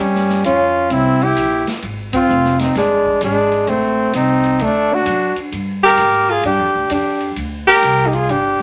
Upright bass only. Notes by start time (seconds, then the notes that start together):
0.00 G2
0.45 F2
0.90 C2
1.37 A#1
1.68 muted upright bass stroke
1.83 G#1
2.29 F1
2.75 G1
3.21 G#1
3.67 A1
4.14 C2
4.60 D2
5.06 F#2
5.36 muted upright bass stroke
5.52 G2
5.98 G#2
6.44 G2
6.59 F2
6.74 D2
6.90 F2
7.36 D2
7.83 C2
8.29 G1